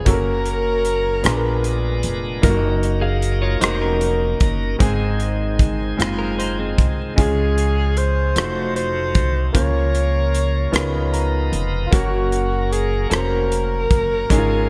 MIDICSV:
0, 0, Header, 1, 7, 480
1, 0, Start_track
1, 0, Tempo, 790514
1, 41, Time_signature, 6, 3, 24, 8
1, 8921, End_track
2, 0, Start_track
2, 0, Title_t, "Alto saxophone"
2, 0, Program_c, 0, 65
2, 59, Note_on_c, 0, 70, 92
2, 1223, Note_off_c, 0, 70, 0
2, 4373, Note_on_c, 0, 68, 70
2, 4843, Note_on_c, 0, 72, 83
2, 4852, Note_off_c, 0, 68, 0
2, 5316, Note_off_c, 0, 72, 0
2, 5320, Note_on_c, 0, 72, 90
2, 5775, Note_off_c, 0, 72, 0
2, 5806, Note_on_c, 0, 73, 93
2, 6981, Note_off_c, 0, 73, 0
2, 7204, Note_on_c, 0, 65, 59
2, 7245, Note_on_c, 0, 66, 85
2, 7254, Note_off_c, 0, 65, 0
2, 7725, Note_on_c, 0, 68, 72
2, 7734, Note_off_c, 0, 66, 0
2, 7951, Note_off_c, 0, 68, 0
2, 7955, Note_on_c, 0, 70, 96
2, 8921, Note_off_c, 0, 70, 0
2, 8921, End_track
3, 0, Start_track
3, 0, Title_t, "Clean electric guitar"
3, 0, Program_c, 1, 27
3, 1830, Note_on_c, 1, 68, 53
3, 1834, Note_on_c, 1, 77, 55
3, 2061, Note_off_c, 1, 68, 0
3, 2062, Note_off_c, 1, 77, 0
3, 2074, Note_on_c, 1, 65, 60
3, 2075, Note_on_c, 1, 73, 57
3, 2189, Note_off_c, 1, 65, 0
3, 2189, Note_off_c, 1, 73, 0
3, 2194, Note_on_c, 1, 72, 74
3, 2198, Note_on_c, 1, 63, 55
3, 2309, Note_off_c, 1, 72, 0
3, 2311, Note_off_c, 1, 63, 0
3, 2313, Note_on_c, 1, 61, 52
3, 2317, Note_on_c, 1, 70, 52
3, 2890, Note_off_c, 1, 70, 0
3, 2891, Note_off_c, 1, 61, 0
3, 3756, Note_on_c, 1, 70, 53
3, 3870, Note_off_c, 1, 70, 0
3, 3878, Note_on_c, 1, 72, 60
3, 3885, Note_on_c, 1, 63, 51
3, 3991, Note_off_c, 1, 72, 0
3, 3995, Note_off_c, 1, 63, 0
3, 4001, Note_on_c, 1, 60, 50
3, 4005, Note_on_c, 1, 68, 51
3, 4341, Note_off_c, 1, 60, 0
3, 4342, Note_off_c, 1, 68, 0
3, 8921, End_track
4, 0, Start_track
4, 0, Title_t, "Grand piano"
4, 0, Program_c, 2, 0
4, 0, Control_c, 2, 64, 127
4, 32, Note_on_c, 2, 58, 66
4, 40, Note_on_c, 2, 61, 57
4, 42, Note_on_c, 2, 66, 60
4, 46, Note_on_c, 2, 69, 57
4, 48, Control_c, 2, 64, 0
4, 83, Note_off_c, 2, 69, 0
4, 85, Note_on_c, 2, 70, 71
4, 170, Control_c, 2, 64, 127
4, 623, Note_off_c, 2, 58, 0
4, 627, Note_off_c, 2, 61, 0
4, 628, Note_off_c, 2, 66, 0
4, 650, Note_off_c, 2, 70, 0
4, 744, Note_on_c, 2, 59, 64
4, 750, Note_on_c, 2, 62, 59
4, 753, Note_on_c, 2, 46, 65
4, 756, Note_on_c, 2, 68, 59
4, 762, Note_on_c, 2, 70, 68
4, 767, Control_c, 2, 64, 0
4, 873, Control_c, 2, 64, 127
4, 1339, Note_off_c, 2, 59, 0
4, 1342, Note_off_c, 2, 62, 0
4, 1345, Note_off_c, 2, 68, 0
4, 1348, Note_off_c, 2, 70, 0
4, 1450, Note_off_c, 2, 46, 0
4, 1470, Note_on_c, 2, 58, 75
4, 1472, Note_on_c, 2, 63, 73
4, 1478, Note_on_c, 2, 65, 57
4, 1482, Note_on_c, 2, 70, 86
4, 1487, Control_c, 2, 64, 0
4, 1517, Note_on_c, 2, 66, 74
4, 1518, Note_off_c, 2, 65, 0
4, 1604, Control_c, 2, 64, 127
4, 2061, Note_off_c, 2, 58, 0
4, 2062, Note_off_c, 2, 63, 0
4, 2067, Note_off_c, 2, 70, 0
4, 2085, Note_off_c, 2, 66, 0
4, 2189, Note_on_c, 2, 58, 68
4, 2192, Note_on_c, 2, 63, 68
4, 2196, Note_on_c, 2, 66, 58
4, 2203, Note_on_c, 2, 70, 76
4, 2780, Note_off_c, 2, 58, 0
4, 2782, Note_off_c, 2, 63, 0
4, 2784, Note_off_c, 2, 66, 0
4, 2788, Note_off_c, 2, 70, 0
4, 2907, Note_on_c, 2, 56, 72
4, 2910, Note_on_c, 2, 60, 69
4, 2913, Note_on_c, 2, 44, 68
4, 2915, Note_on_c, 2, 63, 74
4, 2920, Note_on_c, 2, 68, 87
4, 2923, Control_c, 2, 64, 0
4, 3018, Control_c, 2, 64, 127
4, 3500, Note_off_c, 2, 56, 0
4, 3501, Note_off_c, 2, 60, 0
4, 3503, Note_off_c, 2, 63, 0
4, 3506, Note_off_c, 2, 68, 0
4, 3610, Note_off_c, 2, 44, 0
4, 3627, Note_on_c, 2, 56, 64
4, 3632, Note_on_c, 2, 60, 57
4, 3635, Note_on_c, 2, 63, 58
4, 3642, Note_on_c, 2, 65, 75
4, 4220, Note_off_c, 2, 56, 0
4, 4222, Note_off_c, 2, 60, 0
4, 4224, Note_off_c, 2, 63, 0
4, 4228, Note_off_c, 2, 65, 0
4, 4347, Note_on_c, 2, 56, 70
4, 4353, Note_on_c, 2, 49, 52
4, 4353, Note_on_c, 2, 61, 59
4, 4356, Note_on_c, 2, 65, 62
4, 4362, Note_on_c, 2, 68, 73
4, 4365, Control_c, 2, 64, 0
4, 4489, Control_c, 2, 64, 127
4, 4941, Note_off_c, 2, 56, 0
4, 4943, Note_off_c, 2, 61, 0
4, 4945, Note_off_c, 2, 65, 0
4, 4948, Note_off_c, 2, 68, 0
4, 5051, Note_off_c, 2, 49, 0
4, 5069, Note_on_c, 2, 57, 51
4, 5076, Note_on_c, 2, 63, 47
4, 5080, Note_on_c, 2, 65, 46
4, 5084, Control_c, 2, 64, 0
4, 5087, Note_on_c, 2, 66, 59
4, 5205, Control_c, 2, 64, 127
4, 5662, Note_off_c, 2, 57, 0
4, 5666, Note_off_c, 2, 63, 0
4, 5668, Note_off_c, 2, 65, 0
4, 5671, Note_off_c, 2, 66, 0
4, 5786, Note_on_c, 2, 58, 62
4, 5790, Note_on_c, 2, 61, 56
4, 5793, Note_on_c, 2, 49, 53
4, 5793, Note_on_c, 2, 65, 64
4, 5799, Note_on_c, 2, 70, 66
4, 5805, Control_c, 2, 64, 0
4, 5919, Control_c, 2, 64, 127
4, 6382, Note_off_c, 2, 58, 0
4, 6384, Note_off_c, 2, 61, 0
4, 6385, Note_off_c, 2, 65, 0
4, 6389, Note_off_c, 2, 70, 0
4, 6493, Note_off_c, 2, 49, 0
4, 6504, Note_on_c, 2, 59, 70
4, 6511, Note_on_c, 2, 49, 63
4, 6513, Note_on_c, 2, 63, 58
4, 6513, Note_on_c, 2, 65, 65
4, 6520, Note_on_c, 2, 70, 72
4, 6528, Control_c, 2, 64, 0
4, 6617, Control_c, 2, 64, 127
4, 6757, Note_on_c, 2, 82, 60
4, 7102, Note_off_c, 2, 59, 0
4, 7106, Note_off_c, 2, 63, 0
4, 7106, Note_off_c, 2, 65, 0
4, 7110, Note_off_c, 2, 70, 0
4, 7213, Note_off_c, 2, 49, 0
4, 7215, Note_off_c, 2, 82, 0
4, 7232, Note_on_c, 2, 58, 75
4, 7234, Note_on_c, 2, 61, 59
4, 7241, Note_on_c, 2, 66, 63
4, 7247, Note_on_c, 2, 70, 76
4, 7249, Control_c, 2, 64, 0
4, 7351, Control_c, 2, 64, 127
4, 7827, Note_off_c, 2, 58, 0
4, 7828, Note_off_c, 2, 61, 0
4, 7831, Note_off_c, 2, 66, 0
4, 7834, Note_off_c, 2, 70, 0
4, 7954, Note_on_c, 2, 58, 60
4, 7957, Note_on_c, 2, 61, 55
4, 7965, Note_on_c, 2, 66, 51
4, 7968, Note_on_c, 2, 72, 59
4, 8548, Note_off_c, 2, 58, 0
4, 8550, Note_off_c, 2, 61, 0
4, 8554, Note_off_c, 2, 66, 0
4, 8555, Note_off_c, 2, 72, 0
4, 8680, Note_on_c, 2, 56, 77
4, 8685, Note_on_c, 2, 61, 73
4, 8688, Note_on_c, 2, 44, 61
4, 8691, Control_c, 2, 64, 0
4, 8691, Note_on_c, 2, 63, 59
4, 8695, Note_on_c, 2, 68, 81
4, 8728, Note_off_c, 2, 63, 0
4, 8732, Note_on_c, 2, 65, 74
4, 8784, Control_c, 2, 64, 127
4, 8921, Note_off_c, 2, 44, 0
4, 8921, Note_off_c, 2, 56, 0
4, 8921, Note_off_c, 2, 61, 0
4, 8921, Note_off_c, 2, 65, 0
4, 8921, Note_off_c, 2, 68, 0
4, 8921, End_track
5, 0, Start_track
5, 0, Title_t, "Tonewheel organ"
5, 0, Program_c, 3, 16
5, 38, Note_on_c, 3, 54, 50
5, 41, Note_on_c, 3, 58, 44
5, 41, Note_on_c, 3, 70, 56
5, 42, Note_on_c, 3, 61, 48
5, 755, Note_off_c, 3, 70, 0
5, 758, Note_off_c, 3, 54, 0
5, 759, Note_off_c, 3, 58, 0
5, 759, Note_on_c, 3, 62, 53
5, 760, Note_off_c, 3, 61, 0
5, 763, Note_on_c, 3, 70, 69
5, 766, Note_on_c, 3, 56, 59
5, 766, Note_on_c, 3, 59, 59
5, 1471, Note_off_c, 3, 70, 0
5, 1475, Note_on_c, 3, 54, 64
5, 1477, Note_off_c, 3, 62, 0
5, 1477, Note_on_c, 3, 58, 58
5, 1479, Note_on_c, 3, 70, 72
5, 1481, Note_off_c, 3, 56, 0
5, 1481, Note_off_c, 3, 59, 0
5, 1484, Note_on_c, 3, 63, 59
5, 2890, Note_off_c, 3, 54, 0
5, 2891, Note_off_c, 3, 58, 0
5, 2892, Note_off_c, 3, 70, 0
5, 2895, Note_off_c, 3, 63, 0
5, 2924, Note_on_c, 3, 56, 55
5, 2925, Note_on_c, 3, 60, 50
5, 2926, Note_on_c, 3, 51, 61
5, 2926, Note_on_c, 3, 68, 65
5, 4336, Note_off_c, 3, 56, 0
5, 4336, Note_off_c, 3, 60, 0
5, 4337, Note_off_c, 3, 51, 0
5, 4337, Note_off_c, 3, 68, 0
5, 4355, Note_on_c, 3, 56, 42
5, 4357, Note_on_c, 3, 61, 47
5, 4360, Note_on_c, 3, 53, 50
5, 4361, Note_on_c, 3, 68, 53
5, 5066, Note_off_c, 3, 53, 0
5, 5068, Note_on_c, 3, 63, 44
5, 5070, Note_on_c, 3, 57, 45
5, 5073, Note_on_c, 3, 53, 54
5, 5073, Note_on_c, 3, 54, 60
5, 5076, Note_off_c, 3, 56, 0
5, 5077, Note_off_c, 3, 61, 0
5, 5079, Note_off_c, 3, 68, 0
5, 5783, Note_off_c, 3, 53, 0
5, 5790, Note_on_c, 3, 53, 53
5, 5794, Note_off_c, 3, 63, 0
5, 5795, Note_off_c, 3, 57, 0
5, 5795, Note_on_c, 3, 61, 46
5, 5796, Note_off_c, 3, 54, 0
5, 5796, Note_on_c, 3, 58, 48
5, 5796, Note_on_c, 3, 70, 57
5, 6505, Note_off_c, 3, 53, 0
5, 6512, Note_on_c, 3, 53, 67
5, 6514, Note_off_c, 3, 70, 0
5, 6518, Note_off_c, 3, 61, 0
5, 6518, Note_on_c, 3, 59, 55
5, 6519, Note_off_c, 3, 58, 0
5, 6519, Note_on_c, 3, 63, 54
5, 6521, Note_on_c, 3, 70, 63
5, 7235, Note_on_c, 3, 58, 52
5, 7236, Note_on_c, 3, 61, 48
5, 7238, Note_off_c, 3, 53, 0
5, 7238, Note_on_c, 3, 54, 49
5, 7239, Note_on_c, 3, 69, 43
5, 7241, Note_off_c, 3, 59, 0
5, 7241, Note_off_c, 3, 63, 0
5, 7242, Note_off_c, 3, 70, 0
5, 7270, Note_on_c, 3, 70, 58
5, 7280, Note_off_c, 3, 69, 0
5, 8657, Note_off_c, 3, 58, 0
5, 8658, Note_off_c, 3, 54, 0
5, 8658, Note_off_c, 3, 61, 0
5, 8675, Note_off_c, 3, 70, 0
5, 8681, Note_on_c, 3, 68, 67
5, 8685, Note_on_c, 3, 61, 61
5, 8686, Note_on_c, 3, 56, 59
5, 8688, Note_on_c, 3, 52, 53
5, 8726, Note_off_c, 3, 52, 0
5, 8729, Note_on_c, 3, 53, 62
5, 8921, Note_off_c, 3, 53, 0
5, 8921, Note_off_c, 3, 56, 0
5, 8921, Note_off_c, 3, 61, 0
5, 8921, Note_off_c, 3, 68, 0
5, 8921, End_track
6, 0, Start_track
6, 0, Title_t, "Upright bass"
6, 0, Program_c, 4, 32
6, 37, Note_on_c, 4, 30, 81
6, 733, Note_off_c, 4, 30, 0
6, 758, Note_on_c, 4, 34, 85
6, 1213, Note_off_c, 4, 34, 0
6, 1239, Note_on_c, 4, 29, 73
6, 1459, Note_off_c, 4, 29, 0
6, 1475, Note_on_c, 4, 30, 90
6, 2171, Note_off_c, 4, 30, 0
6, 2197, Note_on_c, 4, 29, 80
6, 2652, Note_off_c, 4, 29, 0
6, 2676, Note_on_c, 4, 30, 73
6, 2897, Note_off_c, 4, 30, 0
6, 2916, Note_on_c, 4, 32, 71
6, 3612, Note_off_c, 4, 32, 0
6, 3635, Note_on_c, 4, 30, 73
6, 4091, Note_off_c, 4, 30, 0
6, 4120, Note_on_c, 4, 36, 72
6, 4339, Note_off_c, 4, 36, 0
6, 4359, Note_on_c, 4, 37, 85
6, 5054, Note_off_c, 4, 37, 0
6, 5078, Note_on_c, 4, 29, 83
6, 5534, Note_off_c, 4, 29, 0
6, 5555, Note_on_c, 4, 36, 71
6, 5777, Note_off_c, 4, 36, 0
6, 5796, Note_on_c, 4, 37, 79
6, 6494, Note_off_c, 4, 37, 0
6, 6515, Note_on_c, 4, 37, 75
6, 6974, Note_off_c, 4, 37, 0
6, 6996, Note_on_c, 4, 29, 77
6, 7220, Note_off_c, 4, 29, 0
6, 7242, Note_on_c, 4, 30, 79
6, 7939, Note_off_c, 4, 30, 0
6, 7963, Note_on_c, 4, 29, 84
6, 8420, Note_off_c, 4, 29, 0
6, 8444, Note_on_c, 4, 30, 72
6, 8666, Note_off_c, 4, 30, 0
6, 8682, Note_on_c, 4, 32, 80
6, 8921, Note_off_c, 4, 32, 0
6, 8921, End_track
7, 0, Start_track
7, 0, Title_t, "Drums"
7, 37, Note_on_c, 9, 42, 73
7, 38, Note_on_c, 9, 36, 78
7, 98, Note_off_c, 9, 42, 0
7, 99, Note_off_c, 9, 36, 0
7, 276, Note_on_c, 9, 42, 36
7, 337, Note_off_c, 9, 42, 0
7, 515, Note_on_c, 9, 42, 41
7, 575, Note_off_c, 9, 42, 0
7, 753, Note_on_c, 9, 42, 63
7, 767, Note_on_c, 9, 37, 82
7, 813, Note_off_c, 9, 42, 0
7, 828, Note_off_c, 9, 37, 0
7, 997, Note_on_c, 9, 42, 43
7, 1057, Note_off_c, 9, 42, 0
7, 1233, Note_on_c, 9, 42, 44
7, 1293, Note_off_c, 9, 42, 0
7, 1478, Note_on_c, 9, 36, 79
7, 1478, Note_on_c, 9, 42, 75
7, 1538, Note_off_c, 9, 36, 0
7, 1538, Note_off_c, 9, 42, 0
7, 1718, Note_on_c, 9, 42, 38
7, 1779, Note_off_c, 9, 42, 0
7, 1957, Note_on_c, 9, 42, 41
7, 2018, Note_off_c, 9, 42, 0
7, 2194, Note_on_c, 9, 42, 63
7, 2209, Note_on_c, 9, 37, 89
7, 2255, Note_off_c, 9, 42, 0
7, 2269, Note_off_c, 9, 37, 0
7, 2435, Note_on_c, 9, 42, 44
7, 2496, Note_off_c, 9, 42, 0
7, 2673, Note_on_c, 9, 42, 41
7, 2676, Note_on_c, 9, 36, 68
7, 2734, Note_off_c, 9, 42, 0
7, 2737, Note_off_c, 9, 36, 0
7, 2917, Note_on_c, 9, 36, 81
7, 2917, Note_on_c, 9, 42, 68
7, 2977, Note_off_c, 9, 36, 0
7, 2978, Note_off_c, 9, 42, 0
7, 3155, Note_on_c, 9, 42, 37
7, 3216, Note_off_c, 9, 42, 0
7, 3396, Note_on_c, 9, 36, 69
7, 3400, Note_on_c, 9, 42, 37
7, 3457, Note_off_c, 9, 36, 0
7, 3461, Note_off_c, 9, 42, 0
7, 3642, Note_on_c, 9, 42, 61
7, 3656, Note_on_c, 9, 37, 94
7, 3702, Note_off_c, 9, 42, 0
7, 3717, Note_off_c, 9, 37, 0
7, 3884, Note_on_c, 9, 42, 38
7, 3945, Note_off_c, 9, 42, 0
7, 4119, Note_on_c, 9, 36, 73
7, 4121, Note_on_c, 9, 42, 45
7, 4180, Note_off_c, 9, 36, 0
7, 4182, Note_off_c, 9, 42, 0
7, 4359, Note_on_c, 9, 36, 83
7, 4362, Note_on_c, 9, 42, 70
7, 4420, Note_off_c, 9, 36, 0
7, 4423, Note_off_c, 9, 42, 0
7, 4601, Note_on_c, 9, 42, 40
7, 4662, Note_off_c, 9, 42, 0
7, 4838, Note_on_c, 9, 42, 41
7, 4898, Note_off_c, 9, 42, 0
7, 5076, Note_on_c, 9, 42, 68
7, 5091, Note_on_c, 9, 37, 98
7, 5137, Note_off_c, 9, 42, 0
7, 5151, Note_off_c, 9, 37, 0
7, 5320, Note_on_c, 9, 42, 43
7, 5381, Note_off_c, 9, 42, 0
7, 5554, Note_on_c, 9, 42, 44
7, 5557, Note_on_c, 9, 36, 76
7, 5615, Note_off_c, 9, 42, 0
7, 5618, Note_off_c, 9, 36, 0
7, 5797, Note_on_c, 9, 36, 89
7, 5798, Note_on_c, 9, 42, 76
7, 5858, Note_off_c, 9, 36, 0
7, 5859, Note_off_c, 9, 42, 0
7, 6039, Note_on_c, 9, 42, 36
7, 6100, Note_off_c, 9, 42, 0
7, 6281, Note_on_c, 9, 42, 41
7, 6342, Note_off_c, 9, 42, 0
7, 6518, Note_on_c, 9, 42, 70
7, 6533, Note_on_c, 9, 37, 94
7, 6579, Note_off_c, 9, 42, 0
7, 6594, Note_off_c, 9, 37, 0
7, 6762, Note_on_c, 9, 42, 44
7, 6823, Note_off_c, 9, 42, 0
7, 7000, Note_on_c, 9, 42, 45
7, 7060, Note_off_c, 9, 42, 0
7, 7241, Note_on_c, 9, 36, 86
7, 7243, Note_on_c, 9, 42, 76
7, 7302, Note_off_c, 9, 36, 0
7, 7304, Note_off_c, 9, 42, 0
7, 7482, Note_on_c, 9, 42, 38
7, 7543, Note_off_c, 9, 42, 0
7, 7727, Note_on_c, 9, 42, 41
7, 7788, Note_off_c, 9, 42, 0
7, 7961, Note_on_c, 9, 42, 64
7, 7976, Note_on_c, 9, 37, 93
7, 8022, Note_off_c, 9, 42, 0
7, 8036, Note_off_c, 9, 37, 0
7, 8208, Note_on_c, 9, 42, 44
7, 8268, Note_off_c, 9, 42, 0
7, 8444, Note_on_c, 9, 36, 69
7, 8444, Note_on_c, 9, 42, 49
7, 8504, Note_off_c, 9, 42, 0
7, 8505, Note_off_c, 9, 36, 0
7, 8684, Note_on_c, 9, 36, 77
7, 8686, Note_on_c, 9, 42, 75
7, 8745, Note_off_c, 9, 36, 0
7, 8747, Note_off_c, 9, 42, 0
7, 8921, End_track
0, 0, End_of_file